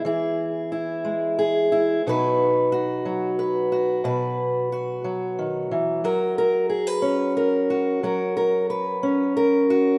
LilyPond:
\new Staff \with { instrumentName = "Steel-string acoustic guitar" } { \time 3/4 \key fis \mixolydian \tempo 4 = 90 << { <b gis'>4 e'4 gis'8 e'8 | <fis dis' fis' b'>4 fis'4 b'8 fis'8 | b'4 fis'2 | ais'8 ais'8 gis'16 b'8. ais'8 fis'8 |
ais'8 ais'8 b'4 ais'8 fis'8 | } \\ { e4. gis4. | b,4. fis4. | b,4. fis8 dis8 e8 | fis4. cis'4. |
fis4. cis'4. | } >> }